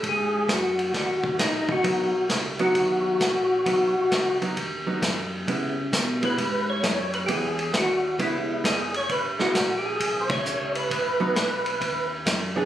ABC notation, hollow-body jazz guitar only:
X:1
M:4/4
L:1/8
Q:"Swing" 1/4=132
K:G#m
V:1 name="Hollow-body jazz guitar"
z8 | [F,B,D] z2 [F,B,D]3 z2 | [F,B,D] z2 [F,B,D] z [F,B,D] z2 | [G,B,E] z2 [G,B,E] z4 |
[G,B,E] z3 [G,B,E]3 z | z [G,B,E] z6 | z [F,B,D] z4 z [E,B,=DG] |]